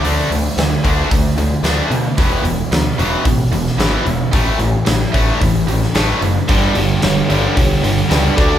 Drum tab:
HH |o-o-o-o-o-o-o-o-|o-o-o-o-o-o-o-o-|o-o-o-o-o-o-o-o-|o-o-o-o-o-o-o-o-|
SD |----o-------o---|----o------oo---|----o------oo---|----o-------o---|
BD |------o-o-------|o-------o-------|o-----o-o-------|o-------o-----o-|